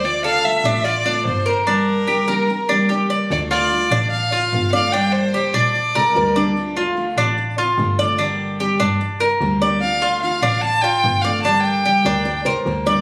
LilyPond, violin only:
\new Staff \with { instrumentName = "Violin" } { \time 4/4 \key d \minor \tempo 4 = 148 d''8 f''8 e''4 d''4 c''4 | bes'2. r4 | d''8 d''4. f''4. f''8 | g''8 c''4 d''2 r8 |
r1 | r1 | f''4 f''4 a''8 g''4 f''8 | a''8 g''2 r4. | }